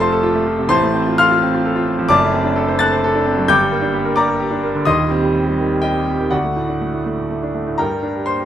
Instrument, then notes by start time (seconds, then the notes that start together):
grand piano
Already playing: F1 F2 F3 A3 A4 D5 D6
0.00 F4 C5 A5 C6
0.12 A4
0.23 F4
0.35 A3
0.46 F3
0.58 C3
0.69 A1 A2 C5 A5 C6
0.83 A3
0.94 C4
1.07 F4
1.18 A4 F5 C6 F6
1.31 F4
1.43 C4
1.54 F4
1.65 A4
1.76 F4
1.88 C4
1.99 F3
2.09 F#1 F#2 D5 A5 D6
2.21 A3
2.32 C4
2.44 D4
2.56 A4
2.68 C5
2.79 A4 A5 F#6 A6
2.93 C5
3.04 A4
3.15 D4
3.26 C4
3.37 F#3
3.48 G1 G2 G5 D6 G6
3.60 G3
3.71 A#3
3.82 D4
3.94 G4
4.05 A#4
4.16 G4 D5 A#5 D6
4.28 A#4
4.40 G4
4.51 D4
4.63 A#3
4.75 D3
4.85 D#1 D#2 D#5 C6 D#6
4.98 G3
5.11 C4
5.23 G3
5.35 C4
5.46 G3
5.58 D#3
5.71 G3
5.82 C4 G4 D#5 G5
5.94 G3
6.07 C4
6.19 D#3
6.30 D2 F#4 D5 F#5
6.44 A3
6.56 A2
6.68 D4
6.81 A3
6.94 A2
7.06 A3
7.18 A2
7.30 A3
7.43 D4
7.54 A3
7.67 A2
7.78 G2 A#4 G5 A#5
7.91 G3
8.03 D4
8.15 G4
8.26 A#3 C5 C6
8.39 G4